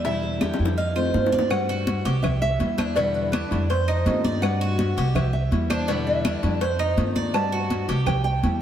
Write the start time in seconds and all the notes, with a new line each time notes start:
Already playing: E2
0.04 B2 D3 G3 B3 E4 E5, high bongo, high conga
0.23 high bongo, high conga
0.41 D3 G3 B3 E4 G4, high bongo, high conga, claves
0.54 high bongo
0.59 F2 D3 G3 B3 E4, high conga
0.65 low bongo
0.77 D#5 F5, muted nylon-string guitar stroke, high conga
0.96 D#3 A3 C4 F4 C5, high conga, claves
1.14 G2 D#3 A3 C4 F4, low bongo, high conga
1.26 low bongo
1.32 D5, high conga
1.39 low bongo
1.50 G3 B3 F#4 F#5, cowbell, high conga, claves
1.69 F#4, high conga
1.87 G3 B3 F#4, cowbell, high conga
2.05 C2 B3 F#4 G4, cowbell, high conga
2.23 E5, muted nylon-string guitar stroke, cowbell, high conga, low conga, claves
2.42 E5, high conga
2.59 E2 E3 G3 B3 E4, cowbell, high conga
2.78 D4 C5, cowbell, high conga, claves
2.96 B2 D3 G3 B3 E4 D5, cowbell
3.14 B4, high conga
3.32 D3 G3 B3 D4 E4 B4, cowbell, high conga, claves
3.51 F2 D3 G3 B3 E4, cowbell, high conga
3.69 C5, muted nylon-string guitar stroke, cowbell, high conga
3.88 D#4, high conga, claves
4.06 G2 D#3 A3 C4 F4, cowbell, high conga
4.24 D5, high conga
4.42 G3 B3 F#4 F#5, cowbell, high conga, claves
4.61 F#4, high conga
4.78 G3 B3 F#4, cowbell, high conga
4.97 C2 B3 F#4 G4, cowbell, high conga
5.15 E5, muted nylon-string guitar stroke, cowbell, high conga, low conga, claves
5.33 E5, high conga
5.51 E2 E3 G3 B3 E4, cowbell, high conga
5.70 D4 C5, cowbell, high conga, claves
5.88 B2 D3 G3 B3 E4 D5, cowbell, high conga
6.07 E5, high conga
6.24 D3 G3 B3 D4 E4, cowbell, high conga, claves
6.43 F2 D3 G3 B3 E4, cowbell, high conga
6.61 C5, muted nylon-string guitar stroke, cowbell, high conga
6.79 D#4, high conga, claves
6.97 G2 D#3 A3 C4 F4, cowbell, high conga
7.15 D5, high conga
7.34 G3 B3 F#4 A5, cowbell, high conga, claves
7.52 F#4, high conga
7.70 G3 B3 F#4, cowbell, high conga
7.88 C2 B3 F#4 G4, cowbell, high conga
8.06 G5, muted nylon-string guitar stroke, cowbell, high conga, low conga, claves
8.24 G5, high conga
8.43 E2 E3 G3 B3 E4, cowbell, high conga